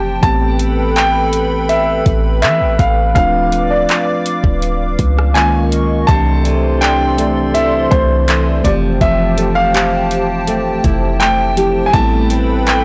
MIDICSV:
0, 0, Header, 1, 8, 480
1, 0, Start_track
1, 0, Tempo, 731707
1, 152, Time_signature, 4, 2, 24, 8
1, 8426, End_track
2, 0, Start_track
2, 0, Title_t, "Grand piano"
2, 0, Program_c, 0, 0
2, 0, Note_on_c, 0, 79, 101
2, 149, Note_on_c, 0, 81, 116
2, 165, Note_off_c, 0, 79, 0
2, 631, Note_on_c, 0, 79, 107
2, 645, Note_off_c, 0, 81, 0
2, 1109, Note_on_c, 0, 76, 90
2, 1126, Note_off_c, 0, 79, 0
2, 1578, Note_off_c, 0, 76, 0
2, 1588, Note_on_c, 0, 76, 97
2, 1830, Note_on_c, 0, 77, 87
2, 1837, Note_off_c, 0, 76, 0
2, 2057, Note_off_c, 0, 77, 0
2, 2067, Note_on_c, 0, 77, 100
2, 2429, Note_on_c, 0, 74, 82
2, 2440, Note_off_c, 0, 77, 0
2, 2884, Note_off_c, 0, 74, 0
2, 3505, Note_on_c, 0, 80, 96
2, 3982, Note_on_c, 0, 81, 114
2, 4003, Note_off_c, 0, 80, 0
2, 4467, Note_on_c, 0, 79, 103
2, 4482, Note_off_c, 0, 81, 0
2, 4948, Note_on_c, 0, 76, 92
2, 4964, Note_off_c, 0, 79, 0
2, 5188, Note_on_c, 0, 72, 92
2, 5197, Note_off_c, 0, 76, 0
2, 5668, Note_on_c, 0, 74, 86
2, 5684, Note_off_c, 0, 72, 0
2, 5723, Note_off_c, 0, 74, 0
2, 5911, Note_on_c, 0, 76, 100
2, 6267, Note_on_c, 0, 77, 100
2, 6282, Note_off_c, 0, 76, 0
2, 6963, Note_off_c, 0, 77, 0
2, 7345, Note_on_c, 0, 79, 100
2, 7781, Note_on_c, 0, 80, 86
2, 7796, Note_off_c, 0, 79, 0
2, 7829, Note_off_c, 0, 80, 0
2, 7829, Note_on_c, 0, 81, 121
2, 8310, Note_on_c, 0, 79, 97
2, 8325, Note_off_c, 0, 81, 0
2, 8426, Note_off_c, 0, 79, 0
2, 8426, End_track
3, 0, Start_track
3, 0, Title_t, "Analog synth pad"
3, 0, Program_c, 1, 89
3, 0, Note_on_c, 1, 67, 79
3, 0, Note_on_c, 1, 72, 72
3, 0, Note_on_c, 1, 79, 73
3, 0, Note_on_c, 1, 81, 85
3, 125, Note_off_c, 1, 81, 0
3, 130, Note_off_c, 1, 72, 0
3, 131, Note_off_c, 1, 67, 0
3, 150, Note_on_c, 1, 71, 73
3, 152, Note_on_c, 1, 69, 83
3, 152, Note_on_c, 1, 83, 93
3, 2046, Note_off_c, 1, 79, 0
3, 2053, Note_off_c, 1, 69, 0
3, 2053, Note_off_c, 1, 83, 0
3, 2072, Note_on_c, 1, 77, 72
3, 2073, Note_on_c, 1, 86, 88
3, 2074, Note_on_c, 1, 74, 70
3, 3485, Note_off_c, 1, 71, 0
3, 3498, Note_off_c, 1, 86, 0
3, 3499, Note_off_c, 1, 74, 0
3, 3509, Note_on_c, 1, 75, 67
3, 3510, Note_on_c, 1, 85, 84
3, 3511, Note_on_c, 1, 70, 77
3, 3973, Note_off_c, 1, 77, 0
3, 3986, Note_off_c, 1, 75, 0
3, 3986, Note_off_c, 1, 85, 0
3, 3987, Note_off_c, 1, 70, 0
3, 3990, Note_on_c, 1, 74, 78
3, 3991, Note_on_c, 1, 69, 78
3, 3992, Note_on_c, 1, 72, 74
3, 3992, Note_on_c, 1, 84, 94
3, 5654, Note_off_c, 1, 69, 0
3, 5654, Note_off_c, 1, 74, 0
3, 5655, Note_off_c, 1, 84, 0
3, 5668, Note_on_c, 1, 79, 73
3, 5669, Note_on_c, 1, 67, 77
3, 5670, Note_on_c, 1, 81, 86
3, 7806, Note_off_c, 1, 72, 0
3, 7809, Note_off_c, 1, 67, 0
3, 7809, Note_off_c, 1, 81, 0
3, 7832, Note_on_c, 1, 69, 84
3, 7832, Note_on_c, 1, 71, 71
3, 7833, Note_on_c, 1, 83, 84
3, 8426, Note_off_c, 1, 69, 0
3, 8426, Note_off_c, 1, 71, 0
3, 8426, Note_off_c, 1, 79, 0
3, 8426, Note_off_c, 1, 83, 0
3, 8426, End_track
4, 0, Start_track
4, 0, Title_t, "Tine electric piano"
4, 0, Program_c, 2, 4
4, 0, Control_c, 2, 64, 127
4, 139, Note_on_c, 2, 52, 65
4, 146, Note_on_c, 2, 57, 59
4, 153, Note_on_c, 2, 59, 61
4, 160, Control_c, 2, 64, 0
4, 160, Note_on_c, 2, 60, 62
4, 166, Note_on_c, 2, 67, 73
4, 265, Control_c, 2, 64, 127
4, 2039, Note_off_c, 2, 52, 0
4, 2043, Note_off_c, 2, 57, 0
4, 2046, Note_off_c, 2, 59, 0
4, 2049, Note_off_c, 2, 60, 0
4, 2052, Note_off_c, 2, 67, 0
4, 2059, Note_on_c, 2, 53, 68
4, 2065, Note_on_c, 2, 57, 61
4, 2072, Note_on_c, 2, 60, 59
4, 2078, Note_on_c, 2, 62, 61
4, 2080, Control_c, 2, 64, 0
4, 2085, Note_on_c, 2, 65, 73
4, 2193, Control_c, 2, 64, 127
4, 3479, Note_off_c, 2, 53, 0
4, 3482, Note_off_c, 2, 57, 0
4, 3485, Note_off_c, 2, 60, 0
4, 3488, Note_off_c, 2, 62, 0
4, 3492, Note_off_c, 2, 65, 0
4, 3505, Note_on_c, 2, 51, 67
4, 3509, Note_on_c, 2, 56, 61
4, 3511, Note_on_c, 2, 58, 62
4, 3514, Note_on_c, 2, 61, 62
4, 3519, Note_on_c, 2, 65, 74
4, 3520, Control_c, 2, 64, 0
4, 3656, Control_c, 2, 64, 127
4, 3980, Note_on_c, 2, 52, 67
4, 3987, Note_on_c, 2, 57, 61
4, 3988, Note_off_c, 2, 51, 0
4, 3990, Note_off_c, 2, 56, 0
4, 3991, Note_off_c, 2, 58, 0
4, 3992, Note_on_c, 2, 60, 57
4, 3993, Note_off_c, 2, 61, 0
4, 3995, Note_off_c, 2, 65, 0
4, 3999, Control_c, 2, 64, 0
4, 4000, Note_on_c, 2, 62, 56
4, 4007, Note_on_c, 2, 67, 76
4, 4096, Control_c, 2, 64, 127
4, 5639, Note_off_c, 2, 52, 0
4, 5643, Note_off_c, 2, 57, 0
4, 5645, Note_off_c, 2, 60, 0
4, 5650, Note_off_c, 2, 62, 0
4, 5653, Note_off_c, 2, 67, 0
4, 5660, Note_on_c, 2, 53, 66
4, 5667, Note_on_c, 2, 57, 61
4, 5673, Note_on_c, 2, 60, 64
4, 5680, Note_on_c, 2, 52, 61
4, 5681, Control_c, 2, 64, 0
4, 5686, Note_on_c, 2, 67, 75
4, 5779, Control_c, 2, 64, 127
4, 7560, Note_off_c, 2, 53, 0
4, 7563, Note_off_c, 2, 57, 0
4, 7566, Note_off_c, 2, 60, 0
4, 7570, Note_off_c, 2, 52, 0
4, 7573, Note_off_c, 2, 67, 0
4, 7586, Note_on_c, 2, 53, 50
4, 7588, Note_on_c, 2, 57, 46
4, 7592, Note_on_c, 2, 60, 46
4, 7595, Note_on_c, 2, 64, 49
4, 7598, Note_on_c, 2, 67, 57
4, 7818, Note_on_c, 2, 55, 63
4, 7823, Note_off_c, 2, 60, 0
4, 7824, Note_on_c, 2, 59, 60
4, 7829, Note_off_c, 2, 53, 0
4, 7830, Note_off_c, 2, 57, 0
4, 7830, Note_off_c, 2, 64, 0
4, 7831, Note_on_c, 2, 60, 60
4, 7835, Note_off_c, 2, 67, 0
4, 7838, Note_on_c, 2, 64, 63
4, 7840, Control_c, 2, 64, 0
4, 7844, Note_on_c, 2, 69, 70
4, 7971, Control_c, 2, 64, 127
4, 8426, Note_off_c, 2, 55, 0
4, 8426, Note_off_c, 2, 59, 0
4, 8426, Note_off_c, 2, 60, 0
4, 8426, Note_off_c, 2, 64, 0
4, 8426, Note_off_c, 2, 69, 0
4, 8426, End_track
5, 0, Start_track
5, 0, Title_t, "Nylon-string guitar"
5, 0, Program_c, 3, 24
5, 3991, Note_on_c, 3, 48, 82
5, 4230, Note_on_c, 3, 52, 62
5, 4469, Note_on_c, 3, 62, 72
5, 4709, Note_on_c, 3, 57, 64
5, 4948, Note_off_c, 3, 52, 0
5, 4951, Note_on_c, 3, 52, 67
5, 5187, Note_off_c, 3, 57, 0
5, 5190, Note_on_c, 3, 57, 62
5, 5427, Note_off_c, 3, 52, 0
5, 5430, Note_on_c, 3, 52, 62
5, 5666, Note_off_c, 3, 52, 0
5, 5669, Note_on_c, 3, 53, 78
5, 5719, Note_off_c, 3, 48, 0
5, 5719, Note_off_c, 3, 62, 0
5, 5902, Note_off_c, 3, 53, 0
5, 5910, Note_on_c, 3, 53, 77
5, 6147, Note_off_c, 3, 57, 0
5, 6149, Note_on_c, 3, 57, 67
5, 6390, Note_on_c, 3, 67, 71
5, 6867, Note_off_c, 3, 57, 0
5, 6870, Note_on_c, 3, 57, 70
5, 7110, Note_on_c, 3, 64, 64
5, 7348, Note_off_c, 3, 57, 0
5, 7351, Note_on_c, 3, 57, 63
5, 7587, Note_off_c, 3, 67, 0
5, 7590, Note_on_c, 3, 67, 67
5, 7829, Note_off_c, 3, 53, 0
5, 7832, Note_off_c, 3, 57, 0
5, 7832, Note_on_c, 3, 57, 87
5, 8071, Note_on_c, 3, 60, 66
5, 8310, Note_off_c, 3, 67, 0
5, 8312, Note_on_c, 3, 71, 72
5, 8426, Note_off_c, 3, 57, 0
5, 8426, Note_off_c, 3, 60, 0
5, 8426, Note_off_c, 3, 64, 0
5, 8426, Note_off_c, 3, 71, 0
5, 8426, End_track
6, 0, Start_track
6, 0, Title_t, "808-style bass"
6, 0, Program_c, 4, 38
6, 0, Note_on_c, 4, 29, 107
6, 126, Note_off_c, 4, 29, 0
6, 151, Note_on_c, 4, 33, 109
6, 1325, Note_off_c, 4, 33, 0
6, 1353, Note_on_c, 4, 33, 109
6, 1593, Note_on_c, 4, 52, 105
6, 1603, Note_off_c, 4, 33, 0
6, 1711, Note_on_c, 4, 33, 106
6, 1721, Note_off_c, 4, 52, 0
6, 1825, Note_off_c, 4, 33, 0
6, 1831, Note_on_c, 4, 33, 99
6, 2062, Note_off_c, 4, 33, 0
6, 2072, Note_on_c, 4, 26, 103
6, 2532, Note_off_c, 4, 26, 0
6, 2912, Note_on_c, 4, 26, 102
6, 3257, Note_off_c, 4, 26, 0
6, 3274, Note_on_c, 4, 37, 107
6, 3966, Note_off_c, 4, 37, 0
6, 3993, Note_on_c, 4, 36, 106
6, 5166, Note_off_c, 4, 36, 0
6, 5194, Note_on_c, 4, 36, 104
6, 5654, Note_off_c, 4, 36, 0
6, 5674, Note_on_c, 4, 29, 104
6, 5903, Note_off_c, 4, 29, 0
6, 5912, Note_on_c, 4, 29, 106
6, 7085, Note_off_c, 4, 29, 0
6, 7115, Note_on_c, 4, 29, 111
6, 7807, Note_off_c, 4, 29, 0
6, 7832, Note_on_c, 4, 33, 115
6, 8426, Note_off_c, 4, 33, 0
6, 8426, End_track
7, 0, Start_track
7, 0, Title_t, "Downlifter"
7, 0, Program_c, 5, 103
7, 0, Note_on_c, 5, 60, 84
7, 152, Note_off_c, 5, 60, 0
7, 8426, End_track
8, 0, Start_track
8, 0, Title_t, "Drums"
8, 151, Note_on_c, 9, 36, 124
8, 152, Note_on_c, 9, 42, 78
8, 217, Note_off_c, 9, 36, 0
8, 217, Note_off_c, 9, 42, 0
8, 390, Note_on_c, 9, 42, 74
8, 455, Note_off_c, 9, 42, 0
8, 630, Note_on_c, 9, 42, 61
8, 638, Note_on_c, 9, 39, 115
8, 695, Note_off_c, 9, 42, 0
8, 703, Note_off_c, 9, 39, 0
8, 871, Note_on_c, 9, 42, 78
8, 937, Note_off_c, 9, 42, 0
8, 1110, Note_on_c, 9, 42, 71
8, 1176, Note_off_c, 9, 42, 0
8, 1351, Note_on_c, 9, 42, 59
8, 1353, Note_on_c, 9, 36, 86
8, 1416, Note_off_c, 9, 42, 0
8, 1418, Note_off_c, 9, 36, 0
8, 1590, Note_on_c, 9, 42, 71
8, 1597, Note_on_c, 9, 39, 117
8, 1655, Note_off_c, 9, 42, 0
8, 1662, Note_off_c, 9, 39, 0
8, 1831, Note_on_c, 9, 36, 80
8, 1831, Note_on_c, 9, 42, 78
8, 1897, Note_off_c, 9, 36, 0
8, 1897, Note_off_c, 9, 42, 0
8, 2071, Note_on_c, 9, 42, 72
8, 2072, Note_on_c, 9, 36, 123
8, 2137, Note_off_c, 9, 36, 0
8, 2137, Note_off_c, 9, 42, 0
8, 2311, Note_on_c, 9, 42, 70
8, 2377, Note_off_c, 9, 42, 0
8, 2551, Note_on_c, 9, 42, 59
8, 2559, Note_on_c, 9, 39, 111
8, 2617, Note_off_c, 9, 42, 0
8, 2625, Note_off_c, 9, 39, 0
8, 2793, Note_on_c, 9, 42, 79
8, 2859, Note_off_c, 9, 42, 0
8, 2912, Note_on_c, 9, 36, 100
8, 2977, Note_off_c, 9, 36, 0
8, 3033, Note_on_c, 9, 42, 73
8, 3098, Note_off_c, 9, 42, 0
8, 3272, Note_on_c, 9, 42, 66
8, 3274, Note_on_c, 9, 36, 88
8, 3338, Note_off_c, 9, 42, 0
8, 3340, Note_off_c, 9, 36, 0
8, 3402, Note_on_c, 9, 37, 91
8, 3468, Note_off_c, 9, 37, 0
8, 3512, Note_on_c, 9, 42, 74
8, 3519, Note_on_c, 9, 39, 116
8, 3577, Note_off_c, 9, 42, 0
8, 3584, Note_off_c, 9, 39, 0
8, 3754, Note_on_c, 9, 42, 79
8, 3819, Note_off_c, 9, 42, 0
8, 3992, Note_on_c, 9, 36, 124
8, 3992, Note_on_c, 9, 42, 76
8, 4058, Note_off_c, 9, 36, 0
8, 4058, Note_off_c, 9, 42, 0
8, 4232, Note_on_c, 9, 42, 76
8, 4298, Note_off_c, 9, 42, 0
8, 4472, Note_on_c, 9, 42, 62
8, 4480, Note_on_c, 9, 39, 113
8, 4537, Note_off_c, 9, 42, 0
8, 4546, Note_off_c, 9, 39, 0
8, 4713, Note_on_c, 9, 42, 74
8, 4779, Note_off_c, 9, 42, 0
8, 4951, Note_on_c, 9, 42, 69
8, 5017, Note_off_c, 9, 42, 0
8, 5192, Note_on_c, 9, 42, 65
8, 5194, Note_on_c, 9, 36, 86
8, 5258, Note_off_c, 9, 42, 0
8, 5260, Note_off_c, 9, 36, 0
8, 5431, Note_on_c, 9, 42, 73
8, 5438, Note_on_c, 9, 39, 123
8, 5497, Note_off_c, 9, 42, 0
8, 5504, Note_off_c, 9, 39, 0
8, 5673, Note_on_c, 9, 36, 80
8, 5674, Note_on_c, 9, 42, 77
8, 5738, Note_off_c, 9, 36, 0
8, 5739, Note_off_c, 9, 42, 0
8, 5912, Note_on_c, 9, 36, 121
8, 5912, Note_on_c, 9, 42, 74
8, 5977, Note_off_c, 9, 42, 0
8, 5978, Note_off_c, 9, 36, 0
8, 6151, Note_on_c, 9, 42, 76
8, 6217, Note_off_c, 9, 42, 0
8, 6392, Note_on_c, 9, 42, 62
8, 6400, Note_on_c, 9, 39, 110
8, 6458, Note_off_c, 9, 42, 0
8, 6466, Note_off_c, 9, 39, 0
8, 6632, Note_on_c, 9, 42, 76
8, 6698, Note_off_c, 9, 42, 0
8, 6871, Note_on_c, 9, 42, 70
8, 6937, Note_off_c, 9, 42, 0
8, 7112, Note_on_c, 9, 42, 62
8, 7114, Note_on_c, 9, 36, 87
8, 7177, Note_off_c, 9, 42, 0
8, 7180, Note_off_c, 9, 36, 0
8, 7350, Note_on_c, 9, 42, 72
8, 7357, Note_on_c, 9, 39, 117
8, 7416, Note_off_c, 9, 42, 0
8, 7423, Note_off_c, 9, 39, 0
8, 7591, Note_on_c, 9, 42, 72
8, 7657, Note_off_c, 9, 42, 0
8, 7830, Note_on_c, 9, 42, 72
8, 7832, Note_on_c, 9, 36, 124
8, 7896, Note_off_c, 9, 42, 0
8, 7897, Note_off_c, 9, 36, 0
8, 8070, Note_on_c, 9, 42, 72
8, 8135, Note_off_c, 9, 42, 0
8, 8309, Note_on_c, 9, 42, 61
8, 8317, Note_on_c, 9, 39, 109
8, 8375, Note_off_c, 9, 42, 0
8, 8383, Note_off_c, 9, 39, 0
8, 8426, End_track
0, 0, End_of_file